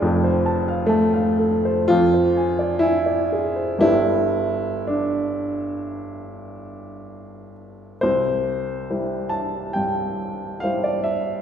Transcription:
\new Staff \with { instrumentName = "Upright piano" } { \time 4/4 \key c \major \tempo 4 = 64 << { r4 a4 f'4 e'4 | e'4 d'2~ d'8 r8 | c''4. a''8 g''4 f''16 d''16 e''8 | } \\ { <f,, f,>16 c''16 a''16 f''16 a''16 f''16 a'16 c''16 f,16 c''16 aes''16 d''16 aes''16 d''16 aes'16 c''16 | <g,, g, g' b' d''>1 | c,4 <g e' c''>4 g,4 <g e' c''>4 | } >> }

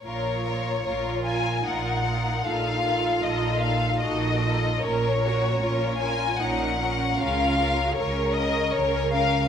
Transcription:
<<
  \new Staff \with { instrumentName = "Violin section" } { \time 3/4 \key bes \minor \tempo 4 = 76 des''4. aes''8 ges''4 | f''4 ees''8 f''8 ees''4 | des''4. aes''8 ges''4 | f''4 des''8 ees''8 des''8 f''8 | }
  \new Staff \with { instrumentName = "Violin section" } { \time 3/4 \key bes \minor <f' bes'>8 <f' bes'>8 <f' bes'>8 <f' bes'>8 <f' bes'>8 <f' bes'>8 | <ees' a'>8 <ees' a'>8 <ees' a'>8 <ees' a'>8 <ees' a'>8 <ees' a'>8 | <des' bes'>8 <des' bes'>8 <des' bes'>8 <des' bes'>8 <des' bes'>8 <des' bes'>8 | <des' bes'>8 <des' bes'>8 <des' bes'>8 <des' bes'>8 <des' bes'>8 <des' bes'>8 | }
  \new Staff \with { instrumentName = "Viola section" } { \time 3/4 \key bes \minor r4 f'4 ees'4 | f'2 ges'8 f'8 | bes'8 ges'8 f'4 ees'8 des'8 | f'4 bes'2 | }
  \new Staff \with { instrumentName = "Cello section" } { \clef bass \time 3/4 \key bes \minor bes,4 bes,4 bes,4 | bes,4 bes,4 bes,4 | bes,4 bes,4 bes,4 | des4 des4 des4 | }
  \new Staff \with { instrumentName = "Double bass section" } { \clef bass \time 3/4 \key bes \minor bes,,4 bes,,4 bes,,4 | bes,,4 bes,,4 bes,,4 | bes,,4 bes,,4 bes,,4 | des,4 des,4 des,4 | }
>>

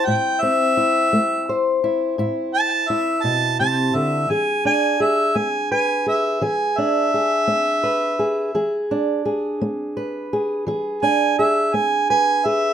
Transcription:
<<
  \new Staff \with { instrumentName = "Harmonica" } { \time 12/8 \key e \phrygian \tempo 4. = 56 g''8 e''2 r4 a''8 e''8 a''8 a''8 e''8 | gis''8 gis''8 e''8 gis''8 gis''8 e''8 gis''8 e''2~ e''8~ | e''8 r2. gis''8 e''8 gis''8 gis''8 e''8 | }
  \new Staff \with { instrumentName = "Steel-string acoustic guitar" } { \time 12/8 \key e \phrygian << { <c' e'>8 c'8 e'4 c''8 e'8 e'4 e'2 | gis'8 d'8 gis'4 b'8 gis'8 gis'8 d'8 gis'4 b'8 gis'8 | gis'8 d'8 gis'4 b'8 gis'8 gis'8 d'8 gis'4 b'8 gis'8 | } \\ { a,4 r8 a4 r8 a,4 r8 b,8 c8 d8 | e4 r8 b4 r8 e4 r8 b4 r8 | e4 r8 b4 r8 e4 r8 b4 r8 | } >> }
>>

